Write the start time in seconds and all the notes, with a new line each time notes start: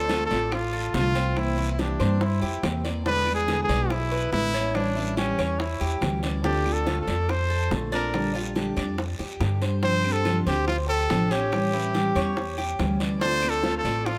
Already playing: D2 A4
0.09 D3 A3 C4 F4, high bongo, short guiro
0.25 A4
0.30 A1 A3 C4 F4 D5, short guiro
0.52 F4, muted steel-string acoustic guitar stroke, high bongo, long guiro, claves
0.73 A4
0.94 C2 D3 A3 C4 F4, high bongo, low bongo, short guiro
1.15 A3 C4 F4, short guiro
1.36 C3 E3 A#3 C4 E4, high bongo, long guiro, claves
1.57 A#3 C4 E4
1.73 E4
1.78 C3 E3 A#3 C4 D4 E4 G4, high bongo, short guiro
1.99 G2 A#3 C4 E4 C5, high bongo, short guiro, claves
2.21 E4, muted steel-string acoustic guitar stroke, high bongo, long guiro
2.42 G4, high bongo
2.63 E2 C3 E3 A#3 C4 E4, high bongo, low bongo, short guiro, claves
2.84 A#3 C4 E4 D5, high bongo, short guiro
3.05 B2 D3 G#3 B3 D4 E4 B4, high bongo, long guiro
3.27 G#3 B3 E4, claves
3.35 G#4
3.48 B2 D3 G#3 B3 E4 G#4, high bongo, short guiro
3.63 G#4
3.69 B1 G#3 B3 E4 D5, short guiro
3.90 E4, muted steel-string acoustic guitar stroke, high bongo, long guiro, claves
4.12 B4
4.32 A1 B2 D3 G#3 B3 E4, high bongo, low bongo, short guiro
4.54 G#3 B3 C#4 E4, short guiro
4.74 E3 G3 C#4 D4 E4, high bongo, long guiro, claves
4.96 G3 C#4 E4
5.17 E3 G3 C#4 E4 G4, high bongo, short guiro
5.38 E2 G3 C#4 E4 C#5, high bongo, short guiro, claves
5.59 E4, muted steel-string acoustic guitar stroke, high bongo, long guiro
5.81 E2 G4, high bongo
6.01 D2 E3 G3 C#4 E4, high bongo, low bongo, short guiro, claves
6.23 G3 C#4 E4 D5, high bongo, short guiro
6.44 D3 A3 C4 D4 F4 G4, high bongo, long guiro
6.65 A3 C4 F4, claves
6.73 A4
6.86 D3 A3 C4 F4, high bongo, short guiro
7.01 A4
7.07 F2 A3 C4 F4 D5, short guiro
7.29 C5, muted steel-string acoustic guitar stroke, high bongo, long guiro, claves
7.50 A4
7.71 A#1 D3 A3 C4 F4, high bongo, low bongo, short guiro
7.92 A3 C4 D4 F4 A#4, short guiro
8.14 D3 G3 D4 G4, high bongo, long guiro, claves
8.34 G3 D4 F4 G4
8.55 D3 G3 D4 G4, high bongo, short guiro
8.76 F2 G3 D4 G4 D5, high bongo, short guiro, claves
8.98 muted steel-string acoustic guitar stroke, high bongo, long guiro
9.19 F2 G4, high bongo
9.40 G2 D3 G3 D4 G4, high bongo, low bongo, short guiro, claves
9.61 G3 D4 G4 C5, high bongo, short guiro
9.82 C3 F3 C4 D4 G4 C5, high bongo, long guiro
10.04 C4 D4 G4, claves
10.12 A4
10.25 C3 F3 C4 D4 F4 G4, high bongo, short guiro
10.46 D2 C4 D4 G4 C5, short guiro
10.67 F4, muted steel-string acoustic guitar stroke, high bongo, long guiro, claves
10.88 G4 A4
11.10 A1 C3 F3 C4 D4 G4, high bongo, low bongo, short guiro
11.31 C4 C#4 D4 G4, short guiro
11.52 E3 G3 C#4 E4, high bongo, long guiro, claves
11.73 G3 C#4 E4
11.94 E3 G3 C#4 E4 G4, high bongo, short guiro
12.15 E2 G3 C#4 E4 C#5, high bongo, short guiro, claves
12.37 muted steel-string acoustic guitar stroke, high bongo, long guiro
12.58 G4, high bongo
12.79 D2 E3 G3 C#4 E4, high bongo, low bongo, short guiro, claves
13.00 G3 C#4 E4 D5, high bongo, short guiro
13.21 D3 A3 C4 D4 F4 C5, high bongo, long guiro
13.43 A3 C4 F4, claves
13.49 A4
13.64 D3 A3 C4 F4, high bongo, short guiro
13.78 A4
13.84 A1 A3 C4 F4 D5, short guiro
14.06 F4, muted steel-string acoustic guitar stroke, high bongo, long guiro, claves